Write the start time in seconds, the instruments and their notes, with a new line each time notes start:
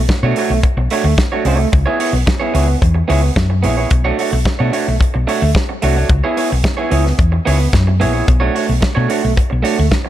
0.09 muted clean electric guitar stroke, muted fingered electric bass stroke, kick, snare
0.23 fingered electric bass B2, clean electric guitar A3 D4 F#4 C#5
0.36 clean electric guitar A3 D4 F#4 C#5, open hi-hat
0.50 fingered electric bass B1, muted clean electric guitar stroke
0.63 muted clean electric guitar stroke, kick, closed hi-hat
0.77 fingered electric bass B1, muted clean electric guitar stroke
0.90 clean electric guitar A3 D4 F#4 C#5, open hi-hat
1.04 fingered electric bass D2, muted clean electric guitar stroke
1.18 muted clean electric guitar stroke, kick, snare, closed hi-hat
1.32 clean electric guitar A3 D4 F#4 C#5
1.45 fingered electric bass C2, clean electric guitar A3 D4 F#4 C#5, open hi-hat
1.59 muted clean electric guitar stroke
1.72 fingered electric bass C#2, muted clean electric guitar stroke, kick, closed hi-hat
1.86 clean electric guitar B3 E4 G#4 C#5
1.99 clean electric guitar B3 E4 G#4 C#5, open hi-hat
2.13 fingered electric bass B1, muted clean electric guitar stroke
2.26 muted clean electric guitar stroke, kick, snare, closed hi-hat
2.40 clean electric guitar B3 E4 G#4 C#5
2.54 fingered electric bass C#2, clean electric guitar B3 E4 G#4 C#5, open hi-hat
2.67 muted clean electric guitar stroke
2.81 fingered electric bass E2, muted clean electric guitar stroke, kick, closed hi-hat
2.95 muted clean electric guitar stroke
3.08 fingered electric bass C#2, clean electric guitar B3 E4 G#4 C#5, open hi-hat
3.22 muted clean electric guitar stroke
3.36 fingered electric bass F#2, muted clean electric guitar stroke, kick, snare, closed hi-hat
3.50 muted clean electric guitar stroke
3.63 fingered electric bass A#1, clean electric guitar B3 E4 G#4 C#5, open hi-hat
3.77 clean electric guitar B3 E4 G#4 C#5
3.90 fingered electric bass B1, muted clean electric guitar stroke, kick, closed hi-hat
4.05 clean electric guitar A3 D4 F#4 C#5
4.18 clean electric guitar A3 D4 F#4 C#5, open hi-hat
4.32 fingered electric bass B1, muted clean electric guitar stroke
4.45 muted clean electric guitar stroke, kick, snare
4.59 fingered electric bass B2, clean electric guitar A3 D4 F#4 C#5
4.72 clean electric guitar A3 D4 F#4 C#5, open hi-hat
4.87 fingered electric bass B1, muted clean electric guitar stroke
5.00 muted clean electric guitar stroke, kick, closed hi-hat
5.14 fingered electric bass B1, muted clean electric guitar stroke
5.27 clean electric guitar A3 D4 F#4 C#5, open hi-hat
5.42 fingered electric bass D2, muted clean electric guitar stroke
5.55 muted clean electric guitar stroke, kick, snare, closed hi-hat
5.69 muted clean electric guitar stroke
5.82 fingered electric bass C2, clean electric guitar A3 D4 F#4 C#5, open hi-hat
5.96 clean electric guitar A3 D4 F#4 C#5
6.09 fingered electric bass C#2, kick, closed hi-hat
6.24 clean electric guitar B3 E4 G#4 C#5
6.37 clean electric guitar B3 E4 G#4 C#5, open hi-hat
6.50 fingered electric bass B1, muted clean electric guitar stroke
6.64 muted clean electric guitar stroke, kick, snare, closed hi-hat
6.77 clean electric guitar B3 E4 G#4 C#5
6.90 fingered electric bass C#2, clean electric guitar B3 E4 G#4 C#5, open hi-hat
7.05 muted clean electric guitar stroke, snare
7.18 fingered electric bass E2, muted clean electric guitar stroke, kick, closed hi-hat
7.32 muted clean electric guitar stroke
7.45 fingered electric bass C#2, clean electric guitar B3 E4 G#4 C#5, open hi-hat
7.59 muted clean electric guitar stroke
7.73 fingered electric bass F#2, muted clean electric guitar stroke, kick, snare, closed hi-hat
7.87 muted clean electric guitar stroke
8.00 fingered electric bass A#1, clean electric guitar B3 E4 G#4 C#5, open hi-hat
8.13 clean electric guitar B3 E4 G#4 C#5
8.27 fingered electric bass B1, muted clean electric guitar stroke, kick, closed hi-hat
8.40 clean electric guitar A3 D4 F#4 C#5
8.54 clean electric guitar A3 D4 F#4 C#5, open hi-hat
8.67 fingered electric bass B1, muted clean electric guitar stroke
8.81 muted clean electric guitar stroke, muted fingered electric bass stroke, kick, snare, closed hi-hat
8.95 fingered electric bass B2, clean electric guitar A3 D4 F#4 C#5
9.09 clean electric guitar A3 D4 F#4 C#5, open hi-hat
9.23 fingered electric bass B1, muted clean electric guitar stroke
9.37 muted clean electric guitar stroke, kick, closed hi-hat
9.50 fingered electric bass B1, muted clean electric guitar stroke
9.63 clean electric guitar A3 D4 F#4 C#5, open hi-hat
9.78 fingered electric bass D2, muted clean electric guitar stroke
9.91 muted clean electric guitar stroke, kick, snare, closed hi-hat
10.05 muted clean electric guitar stroke